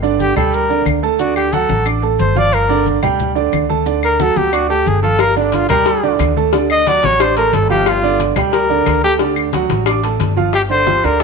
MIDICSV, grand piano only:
0, 0, Header, 1, 2, 480
1, 0, Start_track
1, 0, Key_signature, -2, "minor"
1, 0, Tempo, 333704
1, 1720, Time_signature, 4, 2, 24, 8
1, 16160, End_track
2, 0, Start_track
2, 0, Title_t, "Grand piano"
2, 0, Program_c, 0, 0
2, 36, Note_on_c, 0, 50, 84
2, 41, Note_on_c, 0, 62, 89
2, 46, Note_on_c, 0, 74, 85
2, 431, Note_off_c, 0, 50, 0
2, 434, Note_off_c, 0, 62, 0
2, 437, Note_off_c, 0, 74, 0
2, 522, Note_on_c, 0, 55, 79
2, 524, Note_on_c, 0, 67, 79
2, 529, Note_on_c, 0, 79, 78
2, 915, Note_off_c, 0, 55, 0
2, 916, Note_off_c, 0, 67, 0
2, 919, Note_off_c, 0, 79, 0
2, 997, Note_on_c, 0, 50, 72
2, 1002, Note_on_c, 0, 62, 78
2, 1008, Note_on_c, 0, 74, 72
2, 1392, Note_off_c, 0, 50, 0
2, 1395, Note_off_c, 0, 62, 0
2, 1399, Note_off_c, 0, 74, 0
2, 1475, Note_on_c, 0, 57, 78
2, 1484, Note_on_c, 0, 69, 81
2, 1486, Note_on_c, 0, 81, 84
2, 1674, Note_off_c, 0, 57, 0
2, 1679, Note_off_c, 0, 69, 0
2, 1680, Note_off_c, 0, 81, 0
2, 1718, Note_on_c, 0, 50, 81
2, 1724, Note_on_c, 0, 62, 80
2, 1729, Note_on_c, 0, 74, 82
2, 2112, Note_off_c, 0, 50, 0
2, 2116, Note_off_c, 0, 62, 0
2, 2119, Note_off_c, 0, 74, 0
2, 2202, Note_on_c, 0, 54, 73
2, 2203, Note_on_c, 0, 66, 73
2, 2211, Note_on_c, 0, 78, 79
2, 2594, Note_off_c, 0, 54, 0
2, 2595, Note_off_c, 0, 66, 0
2, 2599, Note_off_c, 0, 78, 0
2, 2670, Note_on_c, 0, 62, 73
2, 2672, Note_on_c, 0, 74, 69
2, 2679, Note_on_c, 0, 86, 73
2, 2871, Note_off_c, 0, 62, 0
2, 2872, Note_off_c, 0, 74, 0
2, 2876, Note_off_c, 0, 86, 0
2, 2907, Note_on_c, 0, 57, 68
2, 2917, Note_on_c, 0, 69, 69
2, 2922, Note_on_c, 0, 81, 69
2, 3306, Note_off_c, 0, 57, 0
2, 3311, Note_off_c, 0, 69, 0
2, 3314, Note_off_c, 0, 81, 0
2, 3387, Note_on_c, 0, 53, 75
2, 3396, Note_on_c, 0, 65, 84
2, 3399, Note_on_c, 0, 77, 78
2, 3785, Note_off_c, 0, 53, 0
2, 3790, Note_off_c, 0, 65, 0
2, 3792, Note_off_c, 0, 77, 0
2, 3868, Note_on_c, 0, 50, 96
2, 3874, Note_on_c, 0, 62, 89
2, 3875, Note_on_c, 0, 74, 92
2, 4266, Note_off_c, 0, 50, 0
2, 4269, Note_off_c, 0, 62, 0
2, 4270, Note_off_c, 0, 74, 0
2, 4353, Note_on_c, 0, 67, 80
2, 4354, Note_on_c, 0, 55, 77
2, 4361, Note_on_c, 0, 79, 79
2, 4748, Note_off_c, 0, 67, 0
2, 4749, Note_off_c, 0, 55, 0
2, 4753, Note_off_c, 0, 79, 0
2, 4823, Note_on_c, 0, 50, 82
2, 4825, Note_on_c, 0, 62, 78
2, 4833, Note_on_c, 0, 74, 82
2, 5222, Note_off_c, 0, 50, 0
2, 5223, Note_off_c, 0, 62, 0
2, 5228, Note_off_c, 0, 74, 0
2, 5309, Note_on_c, 0, 57, 80
2, 5316, Note_on_c, 0, 69, 79
2, 5316, Note_on_c, 0, 81, 80
2, 5509, Note_off_c, 0, 57, 0
2, 5513, Note_off_c, 0, 69, 0
2, 5513, Note_off_c, 0, 81, 0
2, 5550, Note_on_c, 0, 50, 73
2, 5555, Note_on_c, 0, 62, 76
2, 5560, Note_on_c, 0, 74, 81
2, 5946, Note_off_c, 0, 50, 0
2, 5949, Note_off_c, 0, 62, 0
2, 5952, Note_off_c, 0, 74, 0
2, 6026, Note_on_c, 0, 54, 76
2, 6028, Note_on_c, 0, 66, 73
2, 6036, Note_on_c, 0, 78, 69
2, 6423, Note_off_c, 0, 54, 0
2, 6425, Note_off_c, 0, 66, 0
2, 6429, Note_off_c, 0, 78, 0
2, 6507, Note_on_c, 0, 62, 66
2, 6510, Note_on_c, 0, 74, 71
2, 6516, Note_on_c, 0, 86, 75
2, 6707, Note_off_c, 0, 62, 0
2, 6709, Note_off_c, 0, 74, 0
2, 6712, Note_off_c, 0, 86, 0
2, 6748, Note_on_c, 0, 57, 69
2, 6752, Note_on_c, 0, 69, 66
2, 6761, Note_on_c, 0, 81, 69
2, 7144, Note_off_c, 0, 57, 0
2, 7146, Note_off_c, 0, 69, 0
2, 7152, Note_off_c, 0, 81, 0
2, 7235, Note_on_c, 0, 53, 76
2, 7236, Note_on_c, 0, 65, 73
2, 7244, Note_on_c, 0, 77, 73
2, 7628, Note_off_c, 0, 53, 0
2, 7628, Note_off_c, 0, 65, 0
2, 7633, Note_off_c, 0, 77, 0
2, 7712, Note_on_c, 0, 50, 88
2, 7716, Note_on_c, 0, 74, 80
2, 7718, Note_on_c, 0, 62, 86
2, 8106, Note_off_c, 0, 50, 0
2, 8108, Note_off_c, 0, 74, 0
2, 8109, Note_off_c, 0, 62, 0
2, 8202, Note_on_c, 0, 55, 81
2, 8205, Note_on_c, 0, 67, 81
2, 8211, Note_on_c, 0, 79, 78
2, 8592, Note_off_c, 0, 55, 0
2, 8593, Note_off_c, 0, 67, 0
2, 8597, Note_off_c, 0, 79, 0
2, 8676, Note_on_c, 0, 50, 82
2, 8678, Note_on_c, 0, 62, 86
2, 8687, Note_on_c, 0, 74, 81
2, 9068, Note_off_c, 0, 50, 0
2, 9069, Note_off_c, 0, 62, 0
2, 9074, Note_off_c, 0, 74, 0
2, 9156, Note_on_c, 0, 57, 82
2, 9159, Note_on_c, 0, 69, 79
2, 9167, Note_on_c, 0, 81, 78
2, 9351, Note_off_c, 0, 57, 0
2, 9353, Note_off_c, 0, 69, 0
2, 9358, Note_off_c, 0, 81, 0
2, 9395, Note_on_c, 0, 50, 78
2, 9401, Note_on_c, 0, 62, 81
2, 9406, Note_on_c, 0, 74, 79
2, 9787, Note_off_c, 0, 50, 0
2, 9790, Note_off_c, 0, 62, 0
2, 9793, Note_off_c, 0, 74, 0
2, 9875, Note_on_c, 0, 54, 73
2, 9879, Note_on_c, 0, 66, 81
2, 9883, Note_on_c, 0, 78, 77
2, 10267, Note_off_c, 0, 54, 0
2, 10269, Note_off_c, 0, 66, 0
2, 10272, Note_off_c, 0, 78, 0
2, 10357, Note_on_c, 0, 62, 78
2, 10361, Note_on_c, 0, 74, 77
2, 10364, Note_on_c, 0, 86, 78
2, 10552, Note_off_c, 0, 62, 0
2, 10554, Note_off_c, 0, 74, 0
2, 10556, Note_off_c, 0, 86, 0
2, 10596, Note_on_c, 0, 57, 74
2, 10599, Note_on_c, 0, 69, 73
2, 10599, Note_on_c, 0, 81, 73
2, 10988, Note_off_c, 0, 57, 0
2, 10989, Note_off_c, 0, 69, 0
2, 10989, Note_off_c, 0, 81, 0
2, 11071, Note_on_c, 0, 53, 79
2, 11076, Note_on_c, 0, 65, 77
2, 11081, Note_on_c, 0, 77, 84
2, 11464, Note_off_c, 0, 53, 0
2, 11468, Note_off_c, 0, 65, 0
2, 11471, Note_off_c, 0, 77, 0
2, 11552, Note_on_c, 0, 50, 89
2, 11556, Note_on_c, 0, 62, 89
2, 11557, Note_on_c, 0, 74, 94
2, 11945, Note_off_c, 0, 50, 0
2, 11948, Note_off_c, 0, 62, 0
2, 11948, Note_off_c, 0, 74, 0
2, 12033, Note_on_c, 0, 55, 75
2, 12035, Note_on_c, 0, 67, 82
2, 12041, Note_on_c, 0, 79, 81
2, 12426, Note_off_c, 0, 55, 0
2, 12427, Note_off_c, 0, 67, 0
2, 12431, Note_off_c, 0, 79, 0
2, 12509, Note_on_c, 0, 50, 83
2, 12509, Note_on_c, 0, 62, 79
2, 12514, Note_on_c, 0, 74, 79
2, 12904, Note_off_c, 0, 50, 0
2, 12904, Note_off_c, 0, 62, 0
2, 12907, Note_off_c, 0, 74, 0
2, 12991, Note_on_c, 0, 57, 74
2, 12997, Note_on_c, 0, 69, 75
2, 13002, Note_on_c, 0, 81, 80
2, 13189, Note_off_c, 0, 57, 0
2, 13192, Note_off_c, 0, 69, 0
2, 13195, Note_off_c, 0, 81, 0
2, 13232, Note_on_c, 0, 50, 78
2, 13238, Note_on_c, 0, 62, 74
2, 13240, Note_on_c, 0, 74, 83
2, 13627, Note_off_c, 0, 50, 0
2, 13631, Note_off_c, 0, 62, 0
2, 13632, Note_off_c, 0, 74, 0
2, 13715, Note_on_c, 0, 54, 74
2, 13722, Note_on_c, 0, 66, 72
2, 13725, Note_on_c, 0, 78, 70
2, 14110, Note_off_c, 0, 54, 0
2, 14114, Note_off_c, 0, 66, 0
2, 14116, Note_off_c, 0, 78, 0
2, 14193, Note_on_c, 0, 62, 69
2, 14197, Note_on_c, 0, 74, 72
2, 14201, Note_on_c, 0, 86, 75
2, 14391, Note_off_c, 0, 62, 0
2, 14394, Note_off_c, 0, 74, 0
2, 14396, Note_off_c, 0, 86, 0
2, 14438, Note_on_c, 0, 57, 63
2, 14443, Note_on_c, 0, 69, 69
2, 14443, Note_on_c, 0, 81, 68
2, 14832, Note_off_c, 0, 57, 0
2, 14835, Note_off_c, 0, 69, 0
2, 14836, Note_off_c, 0, 81, 0
2, 14910, Note_on_c, 0, 53, 78
2, 14917, Note_on_c, 0, 65, 75
2, 14922, Note_on_c, 0, 77, 77
2, 15111, Note_off_c, 0, 53, 0
2, 15115, Note_off_c, 0, 65, 0
2, 15118, Note_off_c, 0, 77, 0
2, 15386, Note_on_c, 0, 50, 81
2, 15393, Note_on_c, 0, 62, 82
2, 15398, Note_on_c, 0, 74, 80
2, 15590, Note_off_c, 0, 50, 0
2, 15594, Note_off_c, 0, 62, 0
2, 15597, Note_off_c, 0, 74, 0
2, 15630, Note_on_c, 0, 53, 69
2, 15633, Note_on_c, 0, 65, 68
2, 15637, Note_on_c, 0, 67, 65
2, 15833, Note_off_c, 0, 53, 0
2, 15834, Note_off_c, 0, 65, 0
2, 15837, Note_off_c, 0, 67, 0
2, 15878, Note_on_c, 0, 50, 85
2, 15880, Note_on_c, 0, 62, 82
2, 15883, Note_on_c, 0, 74, 79
2, 16078, Note_off_c, 0, 50, 0
2, 16079, Note_off_c, 0, 62, 0
2, 16081, Note_off_c, 0, 74, 0
2, 16160, End_track
0, 0, End_of_file